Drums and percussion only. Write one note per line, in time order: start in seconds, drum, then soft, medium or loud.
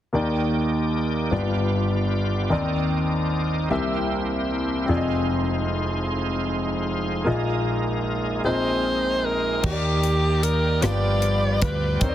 9.63 kick medium
9.63 crash medium
10.03 closed hi-hat soft
10.43 closed hi-hat medium
10.82 cross-stick medium
10.82 closed hi-hat medium
11.22 closed hi-hat soft
11.62 kick medium
11.62 closed hi-hat medium
12.01 kick medium
12.01 closed hi-hat medium